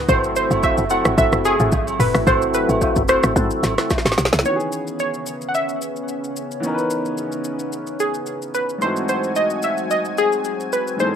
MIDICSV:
0, 0, Header, 1, 7, 480
1, 0, Start_track
1, 0, Key_signature, 4, "minor"
1, 0, Tempo, 545455
1, 77, Time_signature, 4, 2, 24, 8
1, 9817, End_track
2, 0, Start_track
2, 0, Title_t, "Synth pluck"
2, 0, Program_c, 0, 84
2, 79, Note_on_c, 0, 72, 107
2, 310, Note_off_c, 0, 72, 0
2, 320, Note_on_c, 0, 72, 92
2, 427, Note_off_c, 0, 72, 0
2, 561, Note_on_c, 0, 76, 100
2, 782, Note_off_c, 0, 76, 0
2, 800, Note_on_c, 0, 78, 94
2, 1022, Note_off_c, 0, 78, 0
2, 1040, Note_on_c, 0, 76, 101
2, 1279, Note_on_c, 0, 68, 96
2, 1285, Note_off_c, 0, 76, 0
2, 1724, Note_off_c, 0, 68, 0
2, 1759, Note_on_c, 0, 71, 94
2, 1999, Note_on_c, 0, 72, 103
2, 2005, Note_off_c, 0, 71, 0
2, 2221, Note_off_c, 0, 72, 0
2, 2240, Note_on_c, 0, 71, 92
2, 2721, Note_on_c, 0, 72, 83
2, 2732, Note_off_c, 0, 71, 0
2, 3643, Note_off_c, 0, 72, 0
2, 3921, Note_on_c, 0, 73, 92
2, 4389, Note_off_c, 0, 73, 0
2, 4400, Note_on_c, 0, 73, 90
2, 4793, Note_off_c, 0, 73, 0
2, 4827, Note_on_c, 0, 78, 73
2, 4879, Note_off_c, 0, 78, 0
2, 4881, Note_on_c, 0, 76, 96
2, 5564, Note_off_c, 0, 76, 0
2, 7042, Note_on_c, 0, 68, 92
2, 7486, Note_off_c, 0, 68, 0
2, 7520, Note_on_c, 0, 71, 91
2, 7760, Note_on_c, 0, 72, 102
2, 7765, Note_off_c, 0, 71, 0
2, 7982, Note_off_c, 0, 72, 0
2, 8000, Note_on_c, 0, 72, 95
2, 8240, Note_on_c, 0, 75, 101
2, 8245, Note_off_c, 0, 72, 0
2, 8483, Note_on_c, 0, 76, 102
2, 8485, Note_off_c, 0, 75, 0
2, 8719, Note_on_c, 0, 75, 100
2, 8727, Note_off_c, 0, 76, 0
2, 8961, Note_on_c, 0, 68, 97
2, 8965, Note_off_c, 0, 75, 0
2, 9441, Note_on_c, 0, 71, 89
2, 9453, Note_off_c, 0, 68, 0
2, 9681, Note_on_c, 0, 72, 106
2, 9686, Note_off_c, 0, 71, 0
2, 9817, Note_off_c, 0, 72, 0
2, 9817, End_track
3, 0, Start_track
3, 0, Title_t, "Tonewheel organ"
3, 0, Program_c, 1, 16
3, 73, Note_on_c, 1, 60, 90
3, 75, Note_on_c, 1, 64, 87
3, 76, Note_on_c, 1, 66, 81
3, 78, Note_on_c, 1, 69, 101
3, 743, Note_off_c, 1, 60, 0
3, 744, Note_off_c, 1, 64, 0
3, 745, Note_off_c, 1, 66, 0
3, 745, Note_off_c, 1, 69, 0
3, 793, Note_on_c, 1, 60, 75
3, 795, Note_on_c, 1, 64, 68
3, 797, Note_on_c, 1, 66, 70
3, 799, Note_on_c, 1, 69, 84
3, 1018, Note_off_c, 1, 60, 0
3, 1018, Note_off_c, 1, 64, 0
3, 1019, Note_off_c, 1, 66, 0
3, 1020, Note_off_c, 1, 69, 0
3, 1032, Note_on_c, 1, 60, 96
3, 1035, Note_on_c, 1, 64, 80
3, 1036, Note_on_c, 1, 66, 82
3, 1038, Note_on_c, 1, 69, 102
3, 1375, Note_off_c, 1, 60, 0
3, 1376, Note_off_c, 1, 64, 0
3, 1377, Note_off_c, 1, 66, 0
3, 1378, Note_off_c, 1, 69, 0
3, 1406, Note_on_c, 1, 60, 77
3, 1407, Note_on_c, 1, 64, 75
3, 1409, Note_on_c, 1, 66, 73
3, 1411, Note_on_c, 1, 69, 92
3, 1508, Note_off_c, 1, 60, 0
3, 1509, Note_off_c, 1, 64, 0
3, 1509, Note_off_c, 1, 66, 0
3, 1510, Note_off_c, 1, 69, 0
3, 1993, Note_on_c, 1, 60, 94
3, 1995, Note_on_c, 1, 64, 81
3, 1997, Note_on_c, 1, 66, 87
3, 1999, Note_on_c, 1, 69, 102
3, 2663, Note_off_c, 1, 60, 0
3, 2664, Note_off_c, 1, 64, 0
3, 2665, Note_off_c, 1, 66, 0
3, 2666, Note_off_c, 1, 69, 0
3, 2714, Note_on_c, 1, 60, 78
3, 2716, Note_on_c, 1, 64, 70
3, 2718, Note_on_c, 1, 66, 71
3, 2719, Note_on_c, 1, 69, 86
3, 2938, Note_off_c, 1, 60, 0
3, 2939, Note_off_c, 1, 64, 0
3, 2940, Note_off_c, 1, 66, 0
3, 2941, Note_off_c, 1, 69, 0
3, 2953, Note_on_c, 1, 60, 86
3, 2955, Note_on_c, 1, 64, 83
3, 2956, Note_on_c, 1, 66, 83
3, 2958, Note_on_c, 1, 69, 102
3, 3295, Note_off_c, 1, 60, 0
3, 3296, Note_off_c, 1, 64, 0
3, 3297, Note_off_c, 1, 66, 0
3, 3297, Note_off_c, 1, 69, 0
3, 3325, Note_on_c, 1, 60, 81
3, 3327, Note_on_c, 1, 64, 76
3, 3329, Note_on_c, 1, 66, 71
3, 3330, Note_on_c, 1, 69, 87
3, 3427, Note_off_c, 1, 60, 0
3, 3428, Note_off_c, 1, 64, 0
3, 3429, Note_off_c, 1, 66, 0
3, 3430, Note_off_c, 1, 69, 0
3, 9817, End_track
4, 0, Start_track
4, 0, Title_t, "Grand piano"
4, 0, Program_c, 2, 0
4, 3888, Note_on_c, 2, 52, 61
4, 3904, Note_on_c, 2, 59, 58
4, 3921, Note_on_c, 2, 61, 58
4, 3938, Note_on_c, 2, 51, 57
4, 3954, Note_on_c, 2, 66, 55
4, 3998, Note_off_c, 2, 66, 0
4, 4011, Note_on_c, 2, 68, 68
4, 4072, Control_c, 2, 64, 127
4, 5787, Note_off_c, 2, 52, 0
4, 5795, Note_off_c, 2, 59, 0
4, 5804, Note_off_c, 2, 61, 0
4, 5809, Note_on_c, 2, 52, 75
4, 5812, Note_off_c, 2, 51, 0
4, 5826, Note_on_c, 2, 59, 70
4, 5842, Note_on_c, 2, 61, 70
4, 5849, Note_off_c, 2, 68, 0
4, 5859, Note_on_c, 2, 63, 68
4, 5875, Note_on_c, 2, 70, 67
4, 5919, Note_off_c, 2, 70, 0
4, 5932, Note_on_c, 2, 71, 82
4, 7707, Note_off_c, 2, 52, 0
4, 7716, Note_off_c, 2, 59, 0
4, 7724, Note_off_c, 2, 61, 0
4, 7728, Note_on_c, 2, 44, 62
4, 7732, Note_off_c, 2, 63, 0
4, 7741, Note_on_c, 2, 52, 59
4, 7754, Note_on_c, 2, 57, 59
4, 7768, Control_c, 2, 64, 0
4, 7768, Note_on_c, 2, 60, 59
4, 7769, Note_off_c, 2, 71, 0
4, 7781, Note_on_c, 2, 63, 60
4, 7794, Note_on_c, 2, 66, 68
4, 7937, Control_c, 2, 64, 127
4, 9627, Note_off_c, 2, 44, 0
4, 9634, Note_off_c, 2, 52, 0
4, 9640, Note_off_c, 2, 57, 0
4, 9647, Note_off_c, 2, 60, 0
4, 9649, Note_on_c, 2, 44, 62
4, 9654, Note_off_c, 2, 63, 0
4, 9660, Note_off_c, 2, 66, 0
4, 9662, Note_on_c, 2, 52, 59
4, 9675, Note_on_c, 2, 56, 59
4, 9689, Note_on_c, 2, 59, 48
4, 9702, Note_on_c, 2, 63, 61
4, 9715, Note_on_c, 2, 69, 72
4, 9745, Note_off_c, 2, 59, 0
4, 9746, Note_on_c, 2, 60, 56
4, 9817, Note_off_c, 2, 44, 0
4, 9817, Note_off_c, 2, 52, 0
4, 9817, Note_off_c, 2, 56, 0
4, 9817, Note_off_c, 2, 60, 0
4, 9817, Note_off_c, 2, 63, 0
4, 9817, Note_off_c, 2, 69, 0
4, 9817, End_track
5, 0, Start_track
5, 0, Title_t, "Analog synth pad"
5, 0, Program_c, 3, 89
5, 77, Note_on_c, 3, 48, 80
5, 77, Note_on_c, 3, 54, 74
5, 77, Note_on_c, 3, 57, 72
5, 77, Note_on_c, 3, 64, 89
5, 3881, Note_off_c, 3, 48, 0
5, 3881, Note_off_c, 3, 57, 0
5, 3881, Note_off_c, 3, 64, 0
5, 3882, Note_off_c, 3, 54, 0
5, 3918, Note_on_c, 3, 61, 85
5, 3919, Note_on_c, 3, 49, 76
5, 3919, Note_on_c, 3, 59, 67
5, 7722, Note_off_c, 3, 49, 0
5, 7722, Note_off_c, 3, 61, 0
5, 7723, Note_off_c, 3, 59, 0
5, 7755, Note_on_c, 3, 80, 86
5, 7756, Note_on_c, 3, 54, 66
5, 7756, Note_on_c, 3, 60, 70
5, 7756, Note_on_c, 3, 66, 70
5, 9657, Note_off_c, 3, 66, 0
5, 9678, Note_on_c, 3, 52, 70
5, 9817, Note_off_c, 3, 52, 0
5, 9817, Note_off_c, 3, 54, 0
5, 9817, Note_off_c, 3, 60, 0
5, 9817, Note_off_c, 3, 80, 0
5, 9817, End_track
6, 0, Start_track
6, 0, Title_t, "Log drum bass"
6, 0, Program_c, 4, 39
6, 76, Note_on_c, 4, 32, 107
6, 414, Note_off_c, 4, 32, 0
6, 446, Note_on_c, 4, 30, 101
6, 665, Note_off_c, 4, 30, 0
6, 687, Note_on_c, 4, 30, 92
6, 906, Note_off_c, 4, 30, 0
6, 927, Note_on_c, 4, 32, 92
6, 1026, Note_off_c, 4, 32, 0
6, 1036, Note_on_c, 4, 32, 100
6, 1156, Note_off_c, 4, 32, 0
6, 1167, Note_on_c, 4, 30, 96
6, 1386, Note_off_c, 4, 30, 0
6, 1408, Note_on_c, 4, 32, 97
6, 1506, Note_off_c, 4, 32, 0
6, 1517, Note_on_c, 4, 32, 94
6, 1735, Note_off_c, 4, 32, 0
6, 1755, Note_on_c, 4, 30, 94
6, 1876, Note_off_c, 4, 30, 0
6, 1888, Note_on_c, 4, 32, 99
6, 1986, Note_off_c, 4, 32, 0
6, 1996, Note_on_c, 4, 32, 111
6, 2334, Note_off_c, 4, 32, 0
6, 2367, Note_on_c, 4, 32, 87
6, 2586, Note_off_c, 4, 32, 0
6, 2609, Note_on_c, 4, 30, 88
6, 2827, Note_off_c, 4, 30, 0
6, 2848, Note_on_c, 4, 32, 93
6, 2946, Note_off_c, 4, 32, 0
6, 2956, Note_on_c, 4, 44, 116
6, 3076, Note_off_c, 4, 44, 0
6, 3195, Note_on_c, 4, 32, 103
6, 3316, Note_off_c, 4, 32, 0
6, 3567, Note_on_c, 4, 32, 89
6, 3666, Note_off_c, 4, 32, 0
6, 3676, Note_on_c, 4, 35, 98
6, 3796, Note_off_c, 4, 35, 0
6, 3809, Note_on_c, 4, 36, 98
6, 3907, Note_off_c, 4, 36, 0
6, 9817, End_track
7, 0, Start_track
7, 0, Title_t, "Drums"
7, 76, Note_on_c, 9, 36, 117
7, 77, Note_on_c, 9, 67, 77
7, 77, Note_on_c, 9, 82, 75
7, 164, Note_off_c, 9, 36, 0
7, 165, Note_off_c, 9, 67, 0
7, 165, Note_off_c, 9, 82, 0
7, 210, Note_on_c, 9, 82, 54
7, 298, Note_off_c, 9, 82, 0
7, 317, Note_on_c, 9, 82, 102
7, 405, Note_off_c, 9, 82, 0
7, 449, Note_on_c, 9, 67, 69
7, 449, Note_on_c, 9, 82, 57
7, 537, Note_off_c, 9, 67, 0
7, 537, Note_off_c, 9, 82, 0
7, 555, Note_on_c, 9, 82, 77
7, 557, Note_on_c, 9, 36, 102
7, 557, Note_on_c, 9, 77, 86
7, 643, Note_off_c, 9, 82, 0
7, 645, Note_off_c, 9, 36, 0
7, 645, Note_off_c, 9, 77, 0
7, 683, Note_on_c, 9, 82, 59
7, 771, Note_off_c, 9, 82, 0
7, 791, Note_on_c, 9, 82, 94
7, 795, Note_on_c, 9, 67, 71
7, 879, Note_off_c, 9, 82, 0
7, 883, Note_off_c, 9, 67, 0
7, 923, Note_on_c, 9, 82, 62
7, 926, Note_on_c, 9, 37, 103
7, 1011, Note_off_c, 9, 82, 0
7, 1014, Note_off_c, 9, 37, 0
7, 1036, Note_on_c, 9, 36, 124
7, 1039, Note_on_c, 9, 82, 81
7, 1124, Note_off_c, 9, 36, 0
7, 1127, Note_off_c, 9, 82, 0
7, 1166, Note_on_c, 9, 82, 52
7, 1168, Note_on_c, 9, 37, 92
7, 1254, Note_off_c, 9, 82, 0
7, 1256, Note_off_c, 9, 37, 0
7, 1276, Note_on_c, 9, 67, 77
7, 1276, Note_on_c, 9, 82, 94
7, 1364, Note_off_c, 9, 67, 0
7, 1364, Note_off_c, 9, 82, 0
7, 1407, Note_on_c, 9, 82, 52
7, 1408, Note_on_c, 9, 45, 74
7, 1495, Note_off_c, 9, 82, 0
7, 1496, Note_off_c, 9, 45, 0
7, 1512, Note_on_c, 9, 82, 75
7, 1516, Note_on_c, 9, 77, 68
7, 1517, Note_on_c, 9, 36, 103
7, 1600, Note_off_c, 9, 82, 0
7, 1604, Note_off_c, 9, 77, 0
7, 1605, Note_off_c, 9, 36, 0
7, 1647, Note_on_c, 9, 67, 77
7, 1652, Note_on_c, 9, 82, 58
7, 1735, Note_off_c, 9, 67, 0
7, 1740, Note_off_c, 9, 82, 0
7, 1758, Note_on_c, 9, 45, 100
7, 1760, Note_on_c, 9, 46, 73
7, 1760, Note_on_c, 9, 82, 88
7, 1846, Note_off_c, 9, 45, 0
7, 1848, Note_off_c, 9, 46, 0
7, 1848, Note_off_c, 9, 82, 0
7, 1888, Note_on_c, 9, 37, 96
7, 1891, Note_on_c, 9, 82, 61
7, 1976, Note_off_c, 9, 37, 0
7, 1979, Note_off_c, 9, 82, 0
7, 1996, Note_on_c, 9, 36, 115
7, 1997, Note_on_c, 9, 67, 73
7, 1997, Note_on_c, 9, 82, 73
7, 2084, Note_off_c, 9, 36, 0
7, 2085, Note_off_c, 9, 67, 0
7, 2085, Note_off_c, 9, 82, 0
7, 2130, Note_on_c, 9, 82, 56
7, 2218, Note_off_c, 9, 82, 0
7, 2236, Note_on_c, 9, 82, 107
7, 2324, Note_off_c, 9, 82, 0
7, 2370, Note_on_c, 9, 67, 69
7, 2370, Note_on_c, 9, 82, 59
7, 2458, Note_off_c, 9, 67, 0
7, 2458, Note_off_c, 9, 82, 0
7, 2476, Note_on_c, 9, 82, 78
7, 2478, Note_on_c, 9, 36, 101
7, 2478, Note_on_c, 9, 77, 87
7, 2564, Note_off_c, 9, 82, 0
7, 2566, Note_off_c, 9, 36, 0
7, 2566, Note_off_c, 9, 77, 0
7, 2604, Note_on_c, 9, 82, 59
7, 2609, Note_on_c, 9, 36, 91
7, 2692, Note_off_c, 9, 82, 0
7, 2697, Note_off_c, 9, 36, 0
7, 2712, Note_on_c, 9, 82, 95
7, 2716, Note_on_c, 9, 67, 72
7, 2720, Note_on_c, 9, 37, 102
7, 2800, Note_off_c, 9, 82, 0
7, 2804, Note_off_c, 9, 67, 0
7, 2808, Note_off_c, 9, 37, 0
7, 2844, Note_on_c, 9, 82, 62
7, 2847, Note_on_c, 9, 37, 99
7, 2932, Note_off_c, 9, 82, 0
7, 2935, Note_off_c, 9, 37, 0
7, 2957, Note_on_c, 9, 36, 123
7, 2960, Note_on_c, 9, 82, 84
7, 3045, Note_off_c, 9, 36, 0
7, 3048, Note_off_c, 9, 82, 0
7, 3086, Note_on_c, 9, 82, 54
7, 3174, Note_off_c, 9, 82, 0
7, 3197, Note_on_c, 9, 67, 73
7, 3198, Note_on_c, 9, 82, 95
7, 3201, Note_on_c, 9, 38, 71
7, 3285, Note_off_c, 9, 67, 0
7, 3286, Note_off_c, 9, 82, 0
7, 3289, Note_off_c, 9, 38, 0
7, 3328, Note_on_c, 9, 37, 88
7, 3328, Note_on_c, 9, 38, 63
7, 3328, Note_on_c, 9, 82, 50
7, 3416, Note_off_c, 9, 37, 0
7, 3416, Note_off_c, 9, 38, 0
7, 3416, Note_off_c, 9, 82, 0
7, 3433, Note_on_c, 9, 82, 76
7, 3436, Note_on_c, 9, 77, 67
7, 3437, Note_on_c, 9, 36, 104
7, 3437, Note_on_c, 9, 38, 62
7, 3503, Note_off_c, 9, 38, 0
7, 3503, Note_on_c, 9, 38, 59
7, 3521, Note_off_c, 9, 82, 0
7, 3524, Note_off_c, 9, 77, 0
7, 3525, Note_off_c, 9, 36, 0
7, 3567, Note_on_c, 9, 67, 75
7, 3569, Note_off_c, 9, 38, 0
7, 3569, Note_on_c, 9, 38, 79
7, 3572, Note_on_c, 9, 82, 57
7, 3623, Note_off_c, 9, 38, 0
7, 3623, Note_on_c, 9, 38, 70
7, 3655, Note_off_c, 9, 67, 0
7, 3660, Note_off_c, 9, 82, 0
7, 3677, Note_off_c, 9, 38, 0
7, 3677, Note_on_c, 9, 38, 88
7, 3680, Note_on_c, 9, 82, 88
7, 3743, Note_off_c, 9, 38, 0
7, 3743, Note_on_c, 9, 38, 88
7, 3768, Note_off_c, 9, 82, 0
7, 3808, Note_off_c, 9, 38, 0
7, 3808, Note_on_c, 9, 38, 110
7, 3811, Note_on_c, 9, 82, 61
7, 3862, Note_off_c, 9, 38, 0
7, 3862, Note_on_c, 9, 38, 98
7, 3899, Note_off_c, 9, 82, 0
7, 3918, Note_on_c, 9, 82, 71
7, 3950, Note_off_c, 9, 38, 0
7, 4006, Note_off_c, 9, 82, 0
7, 4049, Note_on_c, 9, 82, 53
7, 4137, Note_off_c, 9, 82, 0
7, 4156, Note_on_c, 9, 82, 95
7, 4244, Note_off_c, 9, 82, 0
7, 4289, Note_on_c, 9, 82, 51
7, 4377, Note_off_c, 9, 82, 0
7, 4395, Note_on_c, 9, 82, 69
7, 4483, Note_off_c, 9, 82, 0
7, 4523, Note_on_c, 9, 82, 54
7, 4611, Note_off_c, 9, 82, 0
7, 4631, Note_on_c, 9, 82, 89
7, 4719, Note_off_c, 9, 82, 0
7, 4764, Note_on_c, 9, 82, 57
7, 4852, Note_off_c, 9, 82, 0
7, 4880, Note_on_c, 9, 82, 79
7, 4968, Note_off_c, 9, 82, 0
7, 5007, Note_on_c, 9, 82, 47
7, 5095, Note_off_c, 9, 82, 0
7, 5118, Note_on_c, 9, 82, 89
7, 5206, Note_off_c, 9, 82, 0
7, 5247, Note_on_c, 9, 82, 46
7, 5335, Note_off_c, 9, 82, 0
7, 5353, Note_on_c, 9, 82, 71
7, 5441, Note_off_c, 9, 82, 0
7, 5492, Note_on_c, 9, 82, 53
7, 5580, Note_off_c, 9, 82, 0
7, 5601, Note_on_c, 9, 82, 84
7, 5689, Note_off_c, 9, 82, 0
7, 5733, Note_on_c, 9, 82, 56
7, 5821, Note_off_c, 9, 82, 0
7, 5838, Note_on_c, 9, 82, 69
7, 5926, Note_off_c, 9, 82, 0
7, 5969, Note_on_c, 9, 82, 52
7, 6057, Note_off_c, 9, 82, 0
7, 6075, Note_on_c, 9, 82, 99
7, 6163, Note_off_c, 9, 82, 0
7, 6208, Note_on_c, 9, 82, 50
7, 6296, Note_off_c, 9, 82, 0
7, 6314, Note_on_c, 9, 82, 69
7, 6402, Note_off_c, 9, 82, 0
7, 6443, Note_on_c, 9, 82, 53
7, 6531, Note_off_c, 9, 82, 0
7, 6550, Note_on_c, 9, 82, 86
7, 6638, Note_off_c, 9, 82, 0
7, 6682, Note_on_c, 9, 82, 57
7, 6770, Note_off_c, 9, 82, 0
7, 6798, Note_on_c, 9, 82, 79
7, 6886, Note_off_c, 9, 82, 0
7, 6924, Note_on_c, 9, 82, 48
7, 7012, Note_off_c, 9, 82, 0
7, 7036, Note_on_c, 9, 82, 89
7, 7124, Note_off_c, 9, 82, 0
7, 7166, Note_on_c, 9, 82, 48
7, 7254, Note_off_c, 9, 82, 0
7, 7272, Note_on_c, 9, 82, 74
7, 7360, Note_off_c, 9, 82, 0
7, 7411, Note_on_c, 9, 82, 52
7, 7499, Note_off_c, 9, 82, 0
7, 7520, Note_on_c, 9, 82, 82
7, 7608, Note_off_c, 9, 82, 0
7, 7650, Note_on_c, 9, 82, 55
7, 7738, Note_off_c, 9, 82, 0
7, 7757, Note_on_c, 9, 82, 71
7, 7845, Note_off_c, 9, 82, 0
7, 7888, Note_on_c, 9, 82, 52
7, 7976, Note_off_c, 9, 82, 0
7, 7996, Note_on_c, 9, 82, 103
7, 8084, Note_off_c, 9, 82, 0
7, 8129, Note_on_c, 9, 82, 53
7, 8217, Note_off_c, 9, 82, 0
7, 8234, Note_on_c, 9, 82, 69
7, 8322, Note_off_c, 9, 82, 0
7, 8362, Note_on_c, 9, 82, 56
7, 8450, Note_off_c, 9, 82, 0
7, 8470, Note_on_c, 9, 82, 92
7, 8558, Note_off_c, 9, 82, 0
7, 8602, Note_on_c, 9, 82, 59
7, 8690, Note_off_c, 9, 82, 0
7, 8719, Note_on_c, 9, 82, 78
7, 8807, Note_off_c, 9, 82, 0
7, 8844, Note_on_c, 9, 82, 48
7, 8932, Note_off_c, 9, 82, 0
7, 8956, Note_on_c, 9, 82, 85
7, 9044, Note_off_c, 9, 82, 0
7, 9086, Note_on_c, 9, 82, 49
7, 9174, Note_off_c, 9, 82, 0
7, 9192, Note_on_c, 9, 82, 74
7, 9280, Note_off_c, 9, 82, 0
7, 9330, Note_on_c, 9, 82, 55
7, 9418, Note_off_c, 9, 82, 0
7, 9439, Note_on_c, 9, 82, 82
7, 9527, Note_off_c, 9, 82, 0
7, 9570, Note_on_c, 9, 82, 54
7, 9658, Note_off_c, 9, 82, 0
7, 9677, Note_on_c, 9, 82, 71
7, 9765, Note_off_c, 9, 82, 0
7, 9817, End_track
0, 0, End_of_file